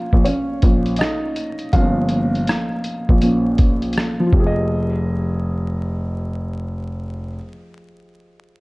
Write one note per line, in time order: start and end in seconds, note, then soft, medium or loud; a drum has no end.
0.00 1.74 F3 medium
0.00 1.74 A#3 medium
0.00 0.27 C#4 medium
0.00 0.22 F4 medium
0.00 0.27 F5 medium
0.13 0.25 A#1 medium
0.13 kick medium
0.25 0.96 C#4 medium
0.25 0.95 C#5 medium
0.25 closed hi-hat medium
0.62 0.97 A#1 medium
0.62 kick medium
0.62 closed hi-hat medium
0.86 closed hi-hat soft
0.96 1.75 D#5 medium
0.96 closed hi-hat medium
1.01 1.70 D#4 medium
1.01 cross-stick loud
1.36 closed hi-hat medium
1.59 closed hi-hat soft
1.73 2.44 G1 medium
1.73 2.27 F3 medium
1.73 2.27 A#3 soft
1.73 2.27 C#4 medium
1.73 3.92 F4 medium
1.73 3.91 F5 medium
1.73 kick loud
1.73 closed hi-hat medium
2.09 closed hi-hat medium
2.35 closed hi-hat soft
2.47 cross-stick loud
2.47 closed hi-hat medium
2.84 closed hi-hat medium
3.09 3.92 A#1 medium
3.09 kick medium
3.22 3.55 F3 soft
3.22 3.55 A#3 soft
3.22 3.56 C#4 soft
3.22 closed hi-hat medium
3.58 kick medium
3.58 closed hi-hat medium
3.82 closed hi-hat soft
3.93 closed hi-hat medium
3.98 cross-stick medium
4.20 7.23 F3 medium
4.27 7.29 F4 medium
4.33 7.36 F1 medium
4.33 7.36 G4 medium
4.33 kick medium
4.40 7.43 G#4 medium
4.46 7.49 D#5 medium